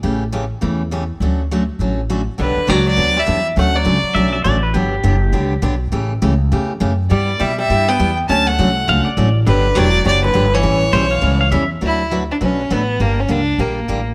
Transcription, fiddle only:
0, 0, Header, 1, 2, 480
1, 0, Start_track
1, 0, Key_signature, 2, "major"
1, 0, Tempo, 294695
1, 59, Time_signature, 4, 2, 24, 8
1, 23038, End_track
2, 0, Start_track
2, 0, Title_t, "Fiddle"
2, 0, Program_c, 0, 110
2, 3915, Note_on_c, 0, 71, 83
2, 4382, Note_on_c, 0, 74, 92
2, 4407, Note_off_c, 0, 71, 0
2, 4668, Note_off_c, 0, 74, 0
2, 4693, Note_on_c, 0, 74, 95
2, 5203, Note_on_c, 0, 76, 97
2, 5227, Note_off_c, 0, 74, 0
2, 5655, Note_off_c, 0, 76, 0
2, 5852, Note_on_c, 0, 78, 92
2, 6133, Note_on_c, 0, 74, 91
2, 6158, Note_off_c, 0, 78, 0
2, 7080, Note_off_c, 0, 74, 0
2, 11572, Note_on_c, 0, 74, 77
2, 12073, Note_on_c, 0, 76, 92
2, 12097, Note_off_c, 0, 74, 0
2, 12353, Note_off_c, 0, 76, 0
2, 12369, Note_on_c, 0, 76, 100
2, 12843, Note_on_c, 0, 79, 95
2, 12868, Note_off_c, 0, 76, 0
2, 13315, Note_off_c, 0, 79, 0
2, 13500, Note_on_c, 0, 81, 102
2, 13801, Note_on_c, 0, 78, 90
2, 13825, Note_off_c, 0, 81, 0
2, 14753, Note_off_c, 0, 78, 0
2, 15427, Note_on_c, 0, 71, 98
2, 15929, Note_on_c, 0, 74, 113
2, 15954, Note_off_c, 0, 71, 0
2, 16383, Note_off_c, 0, 74, 0
2, 16393, Note_on_c, 0, 74, 99
2, 16653, Note_off_c, 0, 74, 0
2, 16691, Note_on_c, 0, 71, 102
2, 17167, Note_on_c, 0, 73, 102
2, 17192, Note_off_c, 0, 71, 0
2, 18787, Note_off_c, 0, 73, 0
2, 19313, Note_on_c, 0, 64, 91
2, 19733, Note_off_c, 0, 64, 0
2, 20059, Note_on_c, 0, 62, 86
2, 20138, Note_off_c, 0, 62, 0
2, 20258, Note_on_c, 0, 61, 78
2, 20722, Note_on_c, 0, 59, 85
2, 20746, Note_off_c, 0, 61, 0
2, 21194, Note_on_c, 0, 58, 78
2, 21219, Note_off_c, 0, 59, 0
2, 21506, Note_on_c, 0, 61, 76
2, 21530, Note_off_c, 0, 58, 0
2, 21683, Note_on_c, 0, 62, 89
2, 21707, Note_off_c, 0, 61, 0
2, 22149, Note_on_c, 0, 58, 74
2, 22174, Note_off_c, 0, 62, 0
2, 22911, Note_off_c, 0, 58, 0
2, 23038, End_track
0, 0, End_of_file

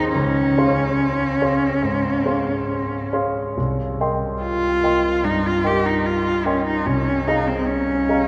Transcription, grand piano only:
0, 0, Header, 1, 2, 480
1, 0, Start_track
1, 0, Tempo, 841515
1, 84, Time_signature, 4, 2, 24, 8
1, 1044, Tempo, 863309
1, 2484, Tempo, 814111
1, 4758, End_track
2, 0, Start_track
2, 0, Title_t, "Grand piano"
2, 0, Program_c, 0, 0
2, 0, Control_c, 0, 64, 127
2, 0, Note_on_c, 0, 39, 49
2, 0, Note_on_c, 0, 68, 37
2, 0, Note_on_c, 0, 72, 39
2, 0, Note_on_c, 0, 79, 40
2, 0, Note_on_c, 0, 84, 39
2, 63, Note_off_c, 0, 68, 0
2, 63, Note_off_c, 0, 72, 0
2, 65, Note_off_c, 0, 79, 0
2, 66, Note_off_c, 0, 84, 0
2, 86, Note_on_c, 0, 37, 51
2, 95, Control_c, 0, 64, 0
2, 98, Note_off_c, 0, 39, 0
2, 201, Control_c, 0, 64, 127
2, 319, Note_off_c, 0, 37, 0
2, 330, Note_on_c, 0, 68, 40
2, 331, Note_on_c, 0, 73, 40
2, 332, Note_on_c, 0, 84, 40
2, 333, Note_on_c, 0, 77, 37
2, 783, Note_off_c, 0, 68, 0
2, 784, Note_off_c, 0, 73, 0
2, 785, Note_off_c, 0, 77, 0
2, 785, Note_off_c, 0, 84, 0
2, 806, Note_on_c, 0, 68, 34
2, 809, Note_on_c, 0, 73, 35
2, 810, Note_on_c, 0, 77, 31
2, 812, Note_on_c, 0, 84, 37
2, 1022, Note_off_c, 0, 68, 0
2, 1023, Note_off_c, 0, 73, 0
2, 1024, Note_off_c, 0, 77, 0
2, 1025, Note_off_c, 0, 84, 0
2, 1043, Note_on_c, 0, 44, 42
2, 1274, Note_off_c, 0, 44, 0
2, 1279, Note_on_c, 0, 68, 30
2, 1282, Note_on_c, 0, 73, 30
2, 1282, Note_on_c, 0, 77, 29
2, 1286, Note_on_c, 0, 84, 33
2, 1744, Note_off_c, 0, 68, 0
2, 1745, Note_off_c, 0, 73, 0
2, 1745, Note_off_c, 0, 77, 0
2, 1747, Note_off_c, 0, 84, 0
2, 1766, Note_on_c, 0, 68, 32
2, 1766, Note_on_c, 0, 73, 33
2, 1769, Note_on_c, 0, 77, 34
2, 1769, Note_on_c, 0, 84, 35
2, 1989, Note_off_c, 0, 68, 0
2, 1989, Note_off_c, 0, 73, 0
2, 1991, Note_off_c, 0, 77, 0
2, 1991, Note_off_c, 0, 84, 0
2, 2012, Note_on_c, 0, 36, 43
2, 2022, Control_c, 0, 64, 0
2, 2127, Control_c, 0, 64, 127
2, 2244, Note_off_c, 0, 36, 0
2, 2251, Note_on_c, 0, 70, 35
2, 2254, Note_on_c, 0, 75, 36
2, 2256, Note_on_c, 0, 79, 36
2, 2256, Note_on_c, 0, 84, 36
2, 2702, Note_off_c, 0, 70, 0
2, 2704, Note_off_c, 0, 75, 0
2, 2705, Note_off_c, 0, 79, 0
2, 2705, Note_off_c, 0, 84, 0
2, 2725, Note_on_c, 0, 70, 28
2, 2729, Note_on_c, 0, 75, 33
2, 2732, Note_on_c, 0, 79, 34
2, 2737, Note_on_c, 0, 84, 33
2, 2940, Note_off_c, 0, 70, 0
2, 2943, Note_off_c, 0, 75, 0
2, 2944, Note_off_c, 0, 79, 0
2, 2947, Note_off_c, 0, 84, 0
2, 2964, Note_on_c, 0, 43, 40
2, 3195, Note_off_c, 0, 43, 0
2, 3204, Note_on_c, 0, 70, 34
2, 3204, Note_on_c, 0, 75, 33
2, 3206, Note_on_c, 0, 79, 28
2, 3208, Note_on_c, 0, 84, 32
2, 3659, Note_off_c, 0, 70, 0
2, 3659, Note_off_c, 0, 75, 0
2, 3660, Note_off_c, 0, 79, 0
2, 3661, Note_off_c, 0, 84, 0
2, 3681, Note_on_c, 0, 70, 34
2, 3687, Note_on_c, 0, 75, 34
2, 3688, Note_on_c, 0, 79, 33
2, 3689, Note_on_c, 0, 84, 36
2, 3901, Note_off_c, 0, 70, 0
2, 3904, Note_off_c, 0, 75, 0
2, 3904, Note_off_c, 0, 79, 0
2, 3905, Note_off_c, 0, 84, 0
2, 3923, Note_on_c, 0, 36, 44
2, 3935, Control_c, 0, 64, 0
2, 4025, Control_c, 0, 64, 127
2, 4160, Note_off_c, 0, 36, 0
2, 4169, Note_on_c, 0, 68, 35
2, 4170, Note_on_c, 0, 75, 36
2, 4173, Note_on_c, 0, 77, 34
2, 4175, Note_on_c, 0, 82, 40
2, 4624, Note_off_c, 0, 68, 0
2, 4625, Note_off_c, 0, 75, 0
2, 4627, Note_off_c, 0, 77, 0
2, 4627, Note_off_c, 0, 82, 0
2, 4647, Note_on_c, 0, 68, 34
2, 4649, Note_on_c, 0, 75, 33
2, 4653, Note_on_c, 0, 77, 33
2, 4656, Note_on_c, 0, 82, 34
2, 4758, Note_off_c, 0, 68, 0
2, 4758, Note_off_c, 0, 75, 0
2, 4758, Note_off_c, 0, 77, 0
2, 4758, Note_off_c, 0, 82, 0
2, 4758, End_track
0, 0, End_of_file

